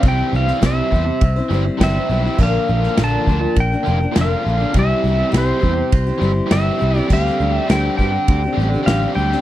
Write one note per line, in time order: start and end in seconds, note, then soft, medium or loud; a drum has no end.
0.02 0.21 C2 loud
0.02 0.33 C3 medium
0.02 0.60 E3 medium
0.02 0.32 G3 medium
0.02 0.34 C4 medium
0.02 0.34 E4 medium
0.02 0.34 C5 medium
0.02 kick loud
0.02 ride bell medium
0.08 0.36 G5 loud
0.33 0.51 C2 loud
0.33 0.60 G3 medium
0.33 0.62 C4 medium
0.33 0.62 E4 medium
0.33 0.62 F5 loud
0.37 0.62 C5 medium
0.46 0.61 G3 medium
0.46 0.60 C4 medium
0.46 0.62 E4 medium
0.46 snare soft
0.61 0.80 C2 medium
0.61 0.91 C3 medium
0.61 0.87 E3 medium
0.61 0.91 G3 medium
0.61 0.92 C4 medium
0.61 0.92 E4 medium
0.61 0.92 C5 medium
0.61 kick medium
0.61 snare loud
0.61 ride bell medium
0.66 1.78 E5 medium
0.88 1.05 E3 medium
0.92 1.10 E2 medium
0.92 1.36 G3 medium
0.92 1.37 C4 medium
0.92 1.37 E4 medium
0.92 kick medium
0.96 1.35 C5 medium
1.05 muted overdriven electric guitar stroke medium
1.21 1.40 C2 medium
1.21 kick loud
1.21 ride bell medium
1.36 1.51 C4 soft
1.36 1.52 E4 medium
1.36 1.51 C5 medium
1.49 1.68 G1 medium
1.49 1.65 E3 medium
1.49 1.80 G3 medium
1.49 1.80 C4 medium
1.53 1.81 E4 medium
1.53 1.82 C5 medium
1.64 muted overdriven electric guitar stroke medium
1.77 1.98 G1 loud
1.77 2.36 C3 medium
1.77 2.07 E3 medium
1.77 kick medium
1.77 snare loud
1.77 ride bell medium
1.82 1.96 C3 medium
1.82 1.96 G3 medium
1.82 1.96 C4 medium
1.82 1.97 E4 medium
1.82 1.96 C5 medium
1.82 2.42 E5 medium
1.97 2.09 C4 soft
1.97 2.10 E4 medium
1.97 2.10 C5 medium
2.08 2.27 B1 medium
2.08 2.36 E3 medium
2.08 2.24 G3 medium
2.08 2.25 C4 medium
2.08 2.25 E4 medium
2.13 2.23 C5 medium
2.24 2.37 G3 medium
2.24 2.40 C4 soft
2.24 2.40 E4 medium
2.24 2.39 C5 medium
2.38 2.57 A#1 medium
2.38 2.68 A#2 medium
2.38 2.69 D3 medium
2.38 2.67 F3 medium
2.38 2.68 A#3 medium
2.38 2.68 D4 medium
2.38 2.79 F4 medium
2.38 2.69 A#4 loud
2.38 kick loud
2.38 crash loud
2.43 3.01 F5 loud
2.68 2.87 A#1 loud
2.68 2.97 F3 medium
2.68 2.97 A#3 medium
2.68 2.98 D4 medium
2.68 2.99 A#4 medium
2.81 2.96 A#3 medium
2.81 2.96 D4 medium
2.81 2.97 F4 medium
2.81 snare soft
2.97 3.16 A#1 medium
2.97 3.27 A#2 medium
2.97 3.27 D3 medium
2.97 3.27 F3 medium
2.97 3.27 A#3 medium
2.97 3.28 D4 medium
2.97 3.27 F4 loud
2.97 3.28 A#4 medium
2.97 snare loud
2.97 ride bell medium
3.04 3.60 A5 loud
3.26 3.45 D2 medium
3.26 3.41 D3 medium
3.26 3.72 F3 medium
3.26 3.72 A#3 medium
3.26 3.40 F4 medium
3.26 kick medium
3.31 3.72 D4 medium
3.31 3.71 A#4 medium
3.41 muted overdriven electric guitar stroke soft
3.56 3.74 A#1 medium
3.56 4.13 G5 loud
3.56 kick loud
3.56 ride bell medium
3.72 3.85 F3 medium
3.72 3.86 A#3 medium
3.72 3.87 D4 medium
3.72 3.86 A#4 medium
3.83 3.99 D3 medium
3.83 4.00 F3 medium
3.83 4.01 A#3 medium
3.83 3.98 F4 loud
3.88 4.05 F1 loud
3.88 4.02 D4 medium
3.88 3.99 A#4 medium
3.99 4.16 D4 medium
3.99 4.15 A#4 medium
3.99 muted overdriven electric guitar stroke soft
4.03 4.15 F3 soft
4.03 4.17 A#3 soft
4.13 4.34 F1 loud
4.13 4.30 A#2 medium
4.13 4.31 D3 medium
4.13 4.31 F3 medium
4.13 4.41 A#3 medium
4.13 4.44 F4 loud
4.13 snare loud
4.13 ride bell medium
4.18 4.31 A#3 medium
4.18 4.31 D4 medium
4.18 4.30 A#4 medium
4.18 4.78 F5 medium
4.31 4.46 F3 soft
4.31 4.47 A#3 soft
4.31 4.46 D4 medium
4.31 4.45 A#4 medium
4.41 4.71 D3 medium
4.41 4.59 A#3 medium
4.41 4.58 D4 medium
4.41 4.56 F4 medium
4.47 4.64 A#1 medium
4.47 4.61 F3 medium
4.47 4.61 A#3 medium
4.47 4.60 D4 medium
4.47 4.59 A#4 medium
4.58 4.75 D4 medium
4.58 4.71 F4 medium
4.58 4.74 A#4 medium
4.63 4.76 F3 soft
4.63 4.76 A#3 soft
4.74 4.92 C2 medium
4.74 5.04 C3 medium
4.74 5.30 E3 loud
4.74 5.03 G3 medium
4.74 5.04 C4 medium
4.74 5.05 E4 medium
4.74 kick loud
4.74 ride bell medium
4.78 5.06 G4 medium
4.78 5.31 E5 loud
5.04 5.22 C2 medium
5.04 5.31 G3 medium
5.04 5.31 C4 medium
5.04 5.32 E4 medium
5.04 5.33 G4 medium
5.15 5.31 G3 medium
5.15 5.32 C4 medium
5.15 5.33 E4 medium
5.31 5.51 C2 medium
5.31 5.62 C3 medium
5.31 5.58 E3 loud
5.31 5.59 G3 medium
5.31 5.61 C4 medium
5.31 5.62 E4 medium
5.31 5.63 G4 medium
5.31 snare loud
5.31 ride bell medium
5.38 6.57 C5 medium
5.59 5.73 E3 medium
5.59 6.06 G3 medium
5.59 6.06 C4 medium
5.59 kick medium
5.63 5.81 E2 medium
5.63 6.07 E4 medium
5.63 6.05 G4 medium
5.74 muted overdriven electric guitar stroke medium
5.92 6.10 C2 medium
5.92 kick loud
5.92 ride bell medium
6.07 6.21 C4 medium
6.07 6.22 E4 medium
6.07 6.21 G4 medium
6.18 6.39 G1 loud
6.18 6.31 E3 medium
6.18 6.51 G3 medium
6.23 6.51 C4 medium
6.23 6.52 E4 medium
6.23 6.52 G4 medium
6.32 muted overdriven electric guitar stroke medium
6.46 7.06 C3 medium
6.46 6.75 E3 medium
6.46 6.78 G3 medium
6.46 6.79 C4 medium
6.46 6.79 E4 loud
6.51 6.69 G1 loud
6.51 6.80 C3 medium
6.51 6.78 G3 medium
6.51 6.79 C4 medium
6.51 6.80 E4 loud
6.51 6.81 G4 medium
6.51 6.98 E5 medium
6.51 snare loud
6.51 ride bell medium
6.77 7.06 E3 medium
6.77 6.94 G3 medium
6.77 6.95 C4 medium
6.81 6.99 C2 medium
6.81 6.95 E4 medium
6.81 6.94 G4 medium
6.92 7.07 G3 medium
6.92 7.08 C4 medium
6.92 7.06 E4 medium
6.92 7.10 G4 medium
6.96 7.10 C4 soft
6.96 7.10 E4 medium
6.96 7.12 D5 medium
7.10 7.28 D2 medium
7.10 7.39 D3 medium
7.10 7.38 G3 medium
7.10 7.39 C4 loud
7.10 7.40 D4 medium
7.10 7.41 G4 medium
7.10 7.55 F5 loud
7.10 kick loud
7.10 crash loud
7.26 snare soft
7.39 7.58 D2 medium
7.39 7.68 G3 medium
7.39 7.69 C4 medium
7.39 7.70 D4 medium
7.39 7.70 G4 medium
7.50 7.66 G3 medium
7.50 7.67 C4 medium
7.50 7.68 G4 medium
7.55 7.72 E5 loud
7.69 7.87 D2 medium
7.69 7.98 D3 medium
7.69 7.98 G3 medium
7.69 7.99 C4 medium
7.69 7.99 D4 medium
7.69 7.99 G4 medium
7.69 7.96 G5 medium
7.69 snare loud
7.69 ride bell medium
7.95 8.16 G2 medium
7.95 8.41 D3 medium
7.95 8.43 G3 medium
7.95 8.10 G4 medium
7.95 8.86 G5 loud
7.95 kick medium
8.00 8.43 C4 medium
8.00 8.44 D4 medium
8.00 8.43 G4 medium
8.11 muted overdriven electric guitar stroke medium
8.28 8.46 D2 medium
8.28 kick loud
8.28 ride bell medium
8.44 8.60 C4 soft
8.44 8.59 D4 medium
8.44 8.58 G4 medium
8.53 8.81 D3 medium
8.53 8.69 G3 medium
8.53 8.69 C4 medium
8.53 8.68 G4 loud
8.58 8.75 A1 loud
8.58 8.73 G3 medium
8.58 8.74 C4 medium
8.62 8.74 D4 medium
8.62 8.72 G4 medium
8.70 muted overdriven electric guitar stroke medium
8.74 8.88 D4 medium
8.74 8.87 G4 medium
8.78 8.88 C4 soft
8.83 9.12 D3 medium
8.83 9.12 G3 loud
8.83 9.13 C4 loud
8.83 9.14 G4 loud
8.83 9.15 F5 medium
8.87 9.05 A1 medium
8.87 9.01 D3 medium
8.87 9.02 G3 medium
8.87 9.02 C4 medium
8.87 9.02 D4 medium
8.87 9.02 G4 medium
8.87 snare loud
8.87 ride bell medium
9.03 9.17 D4 medium
9.03 9.17 G4 medium
9.07 9.16 C4 soft
9.13 9.34 D2 medium
9.13 9.41 D3 medium
9.13 9.30 G3 medium
9.13 9.31 C4 medium
9.13 9.41 G5 medium
9.18 9.32 D4 medium
9.18 9.31 G4 medium
9.28 9.41 G3 medium
9.28 9.41 C4 medium
9.28 9.41 G4 medium
9.32 9.41 C4 soft
9.32 9.41 D4 medium
9.32 9.41 G4 medium
9.32 snare soft